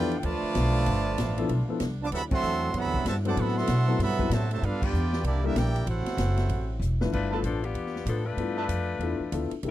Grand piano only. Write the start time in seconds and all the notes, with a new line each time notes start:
Already playing: F3 B3 D4 E4 A4
1.38 F3 B3 D4 E4 A4
1.69 F3 B3 D4 E4 A4
3.25 F#3 B3 C4 E4 A4
3.88 F#3 B3 C4 E4 A4
4.18 F#3 B3 C4 E4 B4
5.44 G3 A#3 D4 E4 A4
7.01 G2 A3 D4 E4 F4 B4
7.31 B3 D4 E4 F4 A4
8.37 B3 D4 E4 F4 A4
9.00 B3 D4 E4 F4 A4
9.32 B3 D4 E4 F4 A4
9.63 A#3 D4 E4 G4 A4